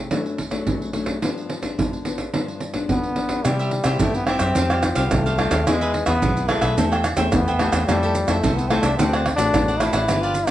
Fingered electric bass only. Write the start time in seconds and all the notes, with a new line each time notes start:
3.45 C3
3.85 C3
4.01 G2
4.40 F#2
4.56 F2
4.96 C2
5.12 C2
5.51 D#2
5.68 E2
6.07 E2
6.23 B1
6.62 B1
6.78 E2
7.17 E2
7.33 E2
7.73 E2
7.88 F2
8.28 F2
8.44 C2
8.83 C2
8.99 D2
9.38 A1
9.54 A1
9.93 A1
10.09 G1